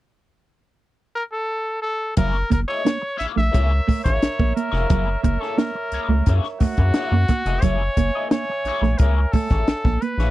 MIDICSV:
0, 0, Header, 1, 8, 480
1, 0, Start_track
1, 0, Tempo, 682594
1, 1529, Time_signature, 4, 2, 24, 8
1, 7247, End_track
2, 0, Start_track
2, 0, Title_t, "Horn section"
2, 0, Program_c, 0, 61
2, 2484, Note_on_c, 0, 76, 94
2, 2485, Note_on_c, 0, 70, 83
2, 2487, Note_on_c, 0, 73, 83
2, 5099, Note_off_c, 0, 76, 0
2, 5100, Note_off_c, 0, 70, 0
2, 5100, Note_off_c, 0, 73, 0
2, 5368, Note_on_c, 0, 80, 90
2, 5369, Note_on_c, 0, 76, 79
2, 5370, Note_on_c, 0, 73, 77
2, 7019, Note_off_c, 0, 73, 0
2, 7019, Note_off_c, 0, 76, 0
2, 7019, Note_off_c, 0, 80, 0
2, 7247, End_track
3, 0, Start_track
3, 0, Title_t, "Trumpet"
3, 0, Program_c, 1, 56
3, 811, Note_on_c, 1, 70, 103
3, 864, Note_off_c, 1, 70, 0
3, 931, Note_on_c, 1, 69, 97
3, 1265, Note_off_c, 1, 69, 0
3, 1281, Note_on_c, 1, 69, 95
3, 1508, Note_off_c, 1, 69, 0
3, 1527, Note_on_c, 1, 70, 105
3, 1751, Note_off_c, 1, 70, 0
3, 1777, Note_on_c, 1, 70, 93
3, 1830, Note_off_c, 1, 70, 0
3, 1885, Note_on_c, 1, 73, 104
3, 2222, Note_off_c, 1, 73, 0
3, 2243, Note_on_c, 1, 76, 98
3, 2298, Note_off_c, 1, 76, 0
3, 2373, Note_on_c, 1, 76, 103
3, 2823, Note_off_c, 1, 76, 0
3, 2841, Note_on_c, 1, 73, 110
3, 3180, Note_off_c, 1, 73, 0
3, 3203, Note_on_c, 1, 70, 99
3, 3658, Note_off_c, 1, 70, 0
3, 3680, Note_on_c, 1, 70, 88
3, 3798, Note_on_c, 1, 69, 93
3, 3809, Note_off_c, 1, 70, 0
3, 3925, Note_on_c, 1, 70, 92
3, 3936, Note_off_c, 1, 69, 0
3, 4458, Note_off_c, 1, 70, 0
3, 4644, Note_on_c, 1, 66, 106
3, 5358, Note_on_c, 1, 73, 110
3, 5368, Note_off_c, 1, 66, 0
3, 5832, Note_off_c, 1, 73, 0
3, 5836, Note_on_c, 1, 73, 99
3, 6316, Note_on_c, 1, 70, 87
3, 6326, Note_off_c, 1, 73, 0
3, 6556, Note_on_c, 1, 69, 107
3, 6566, Note_off_c, 1, 70, 0
3, 7043, Note_on_c, 1, 71, 94
3, 7054, Note_off_c, 1, 69, 0
3, 7247, Note_off_c, 1, 71, 0
3, 7247, End_track
4, 0, Start_track
4, 0, Title_t, "Clean electric guitar"
4, 0, Program_c, 2, 27
4, 1527, Note_on_c, 2, 58, 77
4, 1529, Note_on_c, 2, 64, 85
4, 1532, Note_on_c, 2, 68, 81
4, 1539, Note_on_c, 2, 73, 78
4, 1654, Note_off_c, 2, 58, 0
4, 1655, Note_off_c, 2, 64, 0
4, 1657, Note_off_c, 2, 68, 0
4, 1660, Note_off_c, 2, 73, 0
4, 1884, Note_on_c, 2, 68, 62
4, 1884, Note_on_c, 2, 75, 63
4, 1888, Note_on_c, 2, 58, 43
4, 1890, Note_on_c, 2, 64, 57
4, 1985, Note_off_c, 2, 68, 0
4, 1985, Note_off_c, 2, 75, 0
4, 1987, Note_off_c, 2, 58, 0
4, 1988, Note_off_c, 2, 64, 0
4, 2229, Note_on_c, 2, 58, 70
4, 2232, Note_on_c, 2, 64, 80
4, 2237, Note_on_c, 2, 68, 80
4, 2238, Note_on_c, 2, 73, 83
4, 2342, Note_off_c, 2, 73, 0
4, 2344, Note_off_c, 2, 68, 0
4, 2348, Note_off_c, 2, 64, 0
4, 2365, Note_off_c, 2, 58, 0
4, 2472, Note_on_c, 2, 58, 75
4, 2477, Note_on_c, 2, 64, 89
4, 2479, Note_on_c, 2, 68, 85
4, 2483, Note_on_c, 2, 73, 85
4, 2607, Note_off_c, 2, 58, 0
4, 2610, Note_off_c, 2, 64, 0
4, 2610, Note_off_c, 2, 68, 0
4, 2612, Note_off_c, 2, 73, 0
4, 2843, Note_on_c, 2, 73, 51
4, 2850, Note_on_c, 2, 68, 45
4, 2852, Note_on_c, 2, 64, 50
4, 2857, Note_on_c, 2, 58, 39
4, 2945, Note_off_c, 2, 73, 0
4, 2948, Note_off_c, 2, 68, 0
4, 2949, Note_off_c, 2, 64, 0
4, 2952, Note_off_c, 2, 58, 0
4, 3315, Note_on_c, 2, 73, 91
4, 3323, Note_on_c, 2, 64, 73
4, 3323, Note_on_c, 2, 68, 68
4, 3329, Note_on_c, 2, 58, 73
4, 3431, Note_off_c, 2, 58, 0
4, 3433, Note_off_c, 2, 64, 0
4, 3439, Note_off_c, 2, 68, 0
4, 3439, Note_on_c, 2, 58, 84
4, 3441, Note_off_c, 2, 73, 0
4, 3442, Note_on_c, 2, 64, 87
4, 3447, Note_on_c, 2, 68, 81
4, 3449, Note_on_c, 2, 73, 80
4, 3570, Note_off_c, 2, 58, 0
4, 3572, Note_off_c, 2, 64, 0
4, 3575, Note_off_c, 2, 68, 0
4, 3575, Note_off_c, 2, 73, 0
4, 3802, Note_on_c, 2, 73, 62
4, 3808, Note_on_c, 2, 64, 58
4, 3808, Note_on_c, 2, 68, 58
4, 3815, Note_on_c, 2, 58, 48
4, 3905, Note_off_c, 2, 73, 0
4, 3908, Note_off_c, 2, 64, 0
4, 3908, Note_off_c, 2, 68, 0
4, 3911, Note_off_c, 2, 58, 0
4, 4173, Note_on_c, 2, 58, 69
4, 4178, Note_on_c, 2, 68, 78
4, 4179, Note_on_c, 2, 64, 66
4, 4183, Note_on_c, 2, 73, 64
4, 4280, Note_off_c, 2, 73, 0
4, 4284, Note_off_c, 2, 68, 0
4, 4287, Note_off_c, 2, 64, 0
4, 4298, Note_off_c, 2, 58, 0
4, 4411, Note_on_c, 2, 58, 79
4, 4414, Note_on_c, 2, 64, 75
4, 4419, Note_on_c, 2, 68, 81
4, 4421, Note_on_c, 2, 73, 94
4, 4536, Note_off_c, 2, 58, 0
4, 4538, Note_off_c, 2, 64, 0
4, 4540, Note_off_c, 2, 68, 0
4, 4541, Note_off_c, 2, 73, 0
4, 4770, Note_on_c, 2, 73, 52
4, 4773, Note_on_c, 2, 68, 53
4, 4776, Note_on_c, 2, 64, 51
4, 4777, Note_on_c, 2, 58, 47
4, 4869, Note_off_c, 2, 73, 0
4, 4870, Note_off_c, 2, 68, 0
4, 4872, Note_off_c, 2, 58, 0
4, 4872, Note_off_c, 2, 64, 0
4, 4886, Note_on_c, 2, 58, 92
4, 4891, Note_on_c, 2, 64, 78
4, 4892, Note_on_c, 2, 68, 88
4, 4895, Note_on_c, 2, 73, 95
4, 5014, Note_off_c, 2, 58, 0
4, 5016, Note_off_c, 2, 64, 0
4, 5017, Note_off_c, 2, 68, 0
4, 5019, Note_off_c, 2, 73, 0
4, 5249, Note_on_c, 2, 75, 70
4, 5251, Note_on_c, 2, 68, 59
4, 5252, Note_on_c, 2, 64, 57
4, 5257, Note_on_c, 2, 58, 48
4, 5348, Note_off_c, 2, 75, 0
4, 5349, Note_off_c, 2, 68, 0
4, 5350, Note_off_c, 2, 64, 0
4, 5352, Note_off_c, 2, 58, 0
4, 5365, Note_on_c, 2, 58, 71
4, 5369, Note_on_c, 2, 64, 76
4, 5372, Note_on_c, 2, 68, 85
4, 5377, Note_on_c, 2, 73, 85
4, 5493, Note_off_c, 2, 58, 0
4, 5495, Note_off_c, 2, 64, 0
4, 5497, Note_off_c, 2, 68, 0
4, 5499, Note_off_c, 2, 73, 0
4, 5731, Note_on_c, 2, 75, 69
4, 5736, Note_on_c, 2, 64, 53
4, 5736, Note_on_c, 2, 68, 56
4, 5741, Note_on_c, 2, 58, 46
4, 5829, Note_off_c, 2, 75, 0
4, 5831, Note_off_c, 2, 64, 0
4, 5831, Note_off_c, 2, 68, 0
4, 5834, Note_off_c, 2, 58, 0
4, 6095, Note_on_c, 2, 58, 64
4, 6101, Note_on_c, 2, 64, 70
4, 6104, Note_on_c, 2, 68, 83
4, 6106, Note_on_c, 2, 73, 83
4, 6208, Note_off_c, 2, 73, 0
4, 6212, Note_off_c, 2, 68, 0
4, 6218, Note_off_c, 2, 58, 0
4, 6218, Note_off_c, 2, 64, 0
4, 6336, Note_on_c, 2, 58, 82
4, 6342, Note_on_c, 2, 68, 87
4, 6343, Note_on_c, 2, 64, 85
4, 6346, Note_on_c, 2, 73, 78
4, 6458, Note_off_c, 2, 58, 0
4, 6461, Note_off_c, 2, 68, 0
4, 6462, Note_off_c, 2, 64, 0
4, 6463, Note_off_c, 2, 73, 0
4, 6693, Note_on_c, 2, 73, 54
4, 6696, Note_on_c, 2, 68, 52
4, 6698, Note_on_c, 2, 64, 46
4, 6705, Note_on_c, 2, 58, 42
4, 6789, Note_off_c, 2, 73, 0
4, 6790, Note_off_c, 2, 68, 0
4, 6791, Note_off_c, 2, 64, 0
4, 6795, Note_off_c, 2, 58, 0
4, 7169, Note_on_c, 2, 73, 88
4, 7173, Note_on_c, 2, 68, 72
4, 7176, Note_on_c, 2, 64, 80
4, 7178, Note_on_c, 2, 58, 66
4, 7247, Note_off_c, 2, 58, 0
4, 7247, Note_off_c, 2, 64, 0
4, 7247, Note_off_c, 2, 68, 0
4, 7247, Note_off_c, 2, 73, 0
4, 7247, End_track
5, 0, Start_track
5, 0, Title_t, "Clean electric guitar"
5, 0, Program_c, 3, 27
5, 1527, Note_on_c, 3, 54, 86
5, 1612, Note_off_c, 3, 54, 0
5, 1760, Note_on_c, 3, 58, 81
5, 1847, Note_off_c, 3, 58, 0
5, 2003, Note_on_c, 3, 58, 72
5, 2089, Note_off_c, 3, 58, 0
5, 2363, Note_on_c, 3, 57, 77
5, 2449, Note_off_c, 3, 57, 0
5, 2726, Note_on_c, 3, 57, 74
5, 2811, Note_off_c, 3, 57, 0
5, 3093, Note_on_c, 3, 58, 74
5, 3176, Note_off_c, 3, 58, 0
5, 3210, Note_on_c, 3, 58, 72
5, 3294, Note_off_c, 3, 58, 0
5, 3447, Note_on_c, 3, 54, 80
5, 3532, Note_off_c, 3, 54, 0
5, 3681, Note_on_c, 3, 58, 86
5, 3768, Note_off_c, 3, 58, 0
5, 3921, Note_on_c, 3, 58, 74
5, 4008, Note_off_c, 3, 58, 0
5, 4286, Note_on_c, 3, 57, 89
5, 4371, Note_off_c, 3, 57, 0
5, 4650, Note_on_c, 3, 57, 76
5, 4734, Note_off_c, 3, 57, 0
5, 5009, Note_on_c, 3, 58, 69
5, 5093, Note_off_c, 3, 58, 0
5, 5129, Note_on_c, 3, 58, 66
5, 5213, Note_off_c, 3, 58, 0
5, 5368, Note_on_c, 3, 54, 90
5, 5452, Note_off_c, 3, 54, 0
5, 5610, Note_on_c, 3, 58, 76
5, 5693, Note_off_c, 3, 58, 0
5, 5850, Note_on_c, 3, 58, 67
5, 5933, Note_off_c, 3, 58, 0
5, 6207, Note_on_c, 3, 57, 83
5, 6291, Note_off_c, 3, 57, 0
5, 6573, Note_on_c, 3, 57, 75
5, 6655, Note_off_c, 3, 57, 0
5, 6932, Note_on_c, 3, 58, 74
5, 7014, Note_off_c, 3, 58, 0
5, 7047, Note_on_c, 3, 58, 70
5, 7131, Note_off_c, 3, 58, 0
5, 7247, End_track
6, 0, Start_track
6, 0, Title_t, "Analog synth bass"
6, 0, Program_c, 4, 38
6, 1530, Note_on_c, 4, 30, 116
6, 1715, Note_off_c, 4, 30, 0
6, 1771, Note_on_c, 4, 30, 89
6, 1863, Note_off_c, 4, 30, 0
6, 2253, Note_on_c, 4, 34, 51
6, 2300, Note_off_c, 4, 34, 0
6, 2372, Note_on_c, 4, 34, 96
6, 2463, Note_off_c, 4, 34, 0
6, 2495, Note_on_c, 4, 37, 99
6, 2678, Note_off_c, 4, 37, 0
6, 2853, Note_on_c, 4, 33, 84
6, 2944, Note_off_c, 4, 33, 0
6, 2971, Note_on_c, 4, 34, 45
6, 3018, Note_off_c, 4, 34, 0
6, 3092, Note_on_c, 4, 34, 74
6, 3184, Note_off_c, 4, 34, 0
6, 3325, Note_on_c, 4, 29, 102
6, 3419, Note_off_c, 4, 29, 0
6, 3447, Note_on_c, 4, 30, 92
6, 3633, Note_off_c, 4, 30, 0
6, 3687, Note_on_c, 4, 30, 100
6, 3780, Note_off_c, 4, 30, 0
6, 4163, Note_on_c, 4, 37, 46
6, 4213, Note_off_c, 4, 37, 0
6, 4281, Note_on_c, 4, 37, 92
6, 4377, Note_off_c, 4, 37, 0
6, 4409, Note_on_c, 4, 42, 104
6, 4502, Note_off_c, 4, 42, 0
6, 4646, Note_on_c, 4, 42, 48
6, 4695, Note_off_c, 4, 42, 0
6, 4770, Note_on_c, 4, 42, 99
6, 4862, Note_off_c, 4, 42, 0
6, 5005, Note_on_c, 4, 42, 97
6, 5099, Note_off_c, 4, 42, 0
6, 5244, Note_on_c, 4, 29, 83
6, 5339, Note_off_c, 4, 29, 0
6, 5363, Note_on_c, 4, 30, 103
6, 5550, Note_off_c, 4, 30, 0
6, 5604, Note_on_c, 4, 30, 95
6, 5698, Note_off_c, 4, 30, 0
6, 6080, Note_on_c, 4, 34, 46
6, 6130, Note_off_c, 4, 34, 0
6, 6201, Note_on_c, 4, 34, 93
6, 6296, Note_off_c, 4, 34, 0
6, 6325, Note_on_c, 4, 37, 108
6, 6511, Note_off_c, 4, 37, 0
6, 6684, Note_on_c, 4, 33, 85
6, 6778, Note_off_c, 4, 33, 0
6, 6806, Note_on_c, 4, 34, 42
6, 6854, Note_off_c, 4, 34, 0
6, 6922, Note_on_c, 4, 34, 86
6, 7017, Note_off_c, 4, 34, 0
6, 7157, Note_on_c, 4, 34, 93
6, 7247, Note_off_c, 4, 34, 0
6, 7247, End_track
7, 0, Start_track
7, 0, Title_t, "Muted clean electric guitar strokes"
7, 1648, Note_on_c, 9, 29, 46
7, 1719, Note_off_c, 9, 29, 0
7, 1765, Note_on_c, 9, 29, 46
7, 1835, Note_off_c, 9, 29, 0
7, 1996, Note_on_c, 9, 29, 36
7, 2067, Note_off_c, 9, 29, 0
7, 2120, Note_on_c, 9, 29, 51
7, 2190, Note_off_c, 9, 29, 0
7, 2351, Note_on_c, 9, 29, 56
7, 2421, Note_off_c, 9, 29, 0
7, 2718, Note_on_c, 9, 29, 36
7, 2789, Note_off_c, 9, 29, 0
7, 2970, Note_on_c, 9, 29, 46
7, 3040, Note_off_c, 9, 29, 0
7, 3082, Note_on_c, 9, 29, 44
7, 3152, Note_off_c, 9, 29, 0
7, 3567, Note_on_c, 9, 29, 48
7, 3637, Note_off_c, 9, 29, 0
7, 3682, Note_on_c, 9, 29, 53
7, 3753, Note_off_c, 9, 29, 0
7, 3922, Note_on_c, 9, 29, 39
7, 3992, Note_off_c, 9, 29, 0
7, 4051, Note_on_c, 9, 29, 46
7, 4121, Note_off_c, 9, 29, 0
7, 4289, Note_on_c, 9, 29, 47
7, 4359, Note_off_c, 9, 29, 0
7, 4653, Note_on_c, 9, 29, 50
7, 4723, Note_off_c, 9, 29, 0
7, 4888, Note_on_c, 9, 29, 44
7, 4958, Note_off_c, 9, 29, 0
7, 5129, Note_on_c, 9, 29, 37
7, 5199, Note_off_c, 9, 29, 0
7, 5491, Note_on_c, 9, 29, 50
7, 5562, Note_off_c, 9, 29, 0
7, 5609, Note_on_c, 9, 29, 50
7, 5679, Note_off_c, 9, 29, 0
7, 5853, Note_on_c, 9, 29, 43
7, 5924, Note_off_c, 9, 29, 0
7, 5986, Note_on_c, 9, 29, 58
7, 6056, Note_off_c, 9, 29, 0
7, 6216, Note_on_c, 9, 29, 55
7, 6286, Note_off_c, 9, 29, 0
7, 6574, Note_on_c, 9, 29, 39
7, 6644, Note_off_c, 9, 29, 0
7, 6819, Note_on_c, 9, 29, 47
7, 6889, Note_off_c, 9, 29, 0
7, 6926, Note_on_c, 9, 29, 43
7, 6996, Note_off_c, 9, 29, 0
7, 7247, End_track
8, 0, Start_track
8, 0, Title_t, "Drums"
8, 1525, Note_on_c, 9, 42, 93
8, 1529, Note_on_c, 9, 36, 124
8, 1595, Note_off_c, 9, 42, 0
8, 1599, Note_off_c, 9, 36, 0
8, 1768, Note_on_c, 9, 42, 68
8, 1769, Note_on_c, 9, 36, 97
8, 1838, Note_off_c, 9, 42, 0
8, 1840, Note_off_c, 9, 36, 0
8, 2014, Note_on_c, 9, 38, 104
8, 2014, Note_on_c, 9, 42, 84
8, 2084, Note_off_c, 9, 38, 0
8, 2084, Note_off_c, 9, 42, 0
8, 2250, Note_on_c, 9, 42, 66
8, 2255, Note_on_c, 9, 38, 31
8, 2321, Note_off_c, 9, 42, 0
8, 2325, Note_off_c, 9, 38, 0
8, 2372, Note_on_c, 9, 38, 36
8, 2443, Note_off_c, 9, 38, 0
8, 2491, Note_on_c, 9, 42, 91
8, 2493, Note_on_c, 9, 36, 101
8, 2561, Note_off_c, 9, 42, 0
8, 2563, Note_off_c, 9, 36, 0
8, 2733, Note_on_c, 9, 36, 85
8, 2735, Note_on_c, 9, 46, 75
8, 2803, Note_off_c, 9, 36, 0
8, 2805, Note_off_c, 9, 46, 0
8, 2852, Note_on_c, 9, 36, 88
8, 2852, Note_on_c, 9, 42, 51
8, 2855, Note_on_c, 9, 38, 31
8, 2922, Note_off_c, 9, 36, 0
8, 2923, Note_off_c, 9, 42, 0
8, 2926, Note_off_c, 9, 38, 0
8, 2970, Note_on_c, 9, 42, 83
8, 2972, Note_on_c, 9, 38, 94
8, 3040, Note_off_c, 9, 42, 0
8, 3043, Note_off_c, 9, 38, 0
8, 3091, Note_on_c, 9, 36, 107
8, 3161, Note_off_c, 9, 36, 0
8, 3215, Note_on_c, 9, 42, 68
8, 3285, Note_off_c, 9, 42, 0
8, 3328, Note_on_c, 9, 38, 41
8, 3398, Note_off_c, 9, 38, 0
8, 3444, Note_on_c, 9, 42, 94
8, 3448, Note_on_c, 9, 36, 126
8, 3515, Note_off_c, 9, 42, 0
8, 3518, Note_off_c, 9, 36, 0
8, 3687, Note_on_c, 9, 36, 92
8, 3688, Note_on_c, 9, 42, 66
8, 3757, Note_off_c, 9, 36, 0
8, 3758, Note_off_c, 9, 42, 0
8, 3812, Note_on_c, 9, 38, 34
8, 3882, Note_off_c, 9, 38, 0
8, 3927, Note_on_c, 9, 38, 108
8, 3927, Note_on_c, 9, 42, 70
8, 3997, Note_off_c, 9, 38, 0
8, 3997, Note_off_c, 9, 42, 0
8, 4161, Note_on_c, 9, 42, 69
8, 4231, Note_off_c, 9, 42, 0
8, 4403, Note_on_c, 9, 42, 79
8, 4408, Note_on_c, 9, 36, 92
8, 4473, Note_off_c, 9, 42, 0
8, 4478, Note_off_c, 9, 36, 0
8, 4526, Note_on_c, 9, 38, 36
8, 4596, Note_off_c, 9, 38, 0
8, 4642, Note_on_c, 9, 38, 32
8, 4642, Note_on_c, 9, 46, 66
8, 4646, Note_on_c, 9, 36, 86
8, 4712, Note_off_c, 9, 38, 0
8, 4713, Note_off_c, 9, 46, 0
8, 4717, Note_off_c, 9, 36, 0
8, 4760, Note_on_c, 9, 42, 49
8, 4766, Note_on_c, 9, 36, 88
8, 4830, Note_off_c, 9, 42, 0
8, 4837, Note_off_c, 9, 36, 0
8, 4877, Note_on_c, 9, 42, 79
8, 4880, Note_on_c, 9, 38, 103
8, 4947, Note_off_c, 9, 42, 0
8, 4950, Note_off_c, 9, 38, 0
8, 5121, Note_on_c, 9, 38, 33
8, 5121, Note_on_c, 9, 42, 69
8, 5126, Note_on_c, 9, 36, 91
8, 5192, Note_off_c, 9, 38, 0
8, 5192, Note_off_c, 9, 42, 0
8, 5197, Note_off_c, 9, 36, 0
8, 5245, Note_on_c, 9, 42, 55
8, 5315, Note_off_c, 9, 42, 0
8, 5358, Note_on_c, 9, 42, 95
8, 5364, Note_on_c, 9, 36, 120
8, 5428, Note_off_c, 9, 42, 0
8, 5434, Note_off_c, 9, 36, 0
8, 5604, Note_on_c, 9, 42, 68
8, 5605, Note_on_c, 9, 36, 80
8, 5674, Note_off_c, 9, 42, 0
8, 5675, Note_off_c, 9, 36, 0
8, 5844, Note_on_c, 9, 38, 115
8, 5844, Note_on_c, 9, 42, 82
8, 5914, Note_off_c, 9, 38, 0
8, 5914, Note_off_c, 9, 42, 0
8, 6083, Note_on_c, 9, 42, 59
8, 6088, Note_on_c, 9, 38, 32
8, 6154, Note_off_c, 9, 42, 0
8, 6158, Note_off_c, 9, 38, 0
8, 6207, Note_on_c, 9, 38, 35
8, 6277, Note_off_c, 9, 38, 0
8, 6318, Note_on_c, 9, 42, 95
8, 6326, Note_on_c, 9, 36, 97
8, 6388, Note_off_c, 9, 42, 0
8, 6397, Note_off_c, 9, 36, 0
8, 6561, Note_on_c, 9, 46, 74
8, 6565, Note_on_c, 9, 36, 84
8, 6631, Note_off_c, 9, 46, 0
8, 6635, Note_off_c, 9, 36, 0
8, 6679, Note_on_c, 9, 42, 49
8, 6682, Note_on_c, 9, 38, 31
8, 6685, Note_on_c, 9, 36, 92
8, 6750, Note_off_c, 9, 42, 0
8, 6753, Note_off_c, 9, 38, 0
8, 6755, Note_off_c, 9, 36, 0
8, 6803, Note_on_c, 9, 42, 76
8, 6806, Note_on_c, 9, 38, 104
8, 6874, Note_off_c, 9, 42, 0
8, 6876, Note_off_c, 9, 38, 0
8, 6925, Note_on_c, 9, 36, 103
8, 6925, Note_on_c, 9, 38, 38
8, 6995, Note_off_c, 9, 36, 0
8, 6995, Note_off_c, 9, 38, 0
8, 7045, Note_on_c, 9, 42, 65
8, 7116, Note_off_c, 9, 42, 0
8, 7171, Note_on_c, 9, 38, 38
8, 7171, Note_on_c, 9, 42, 47
8, 7241, Note_off_c, 9, 42, 0
8, 7242, Note_off_c, 9, 38, 0
8, 7247, End_track
0, 0, End_of_file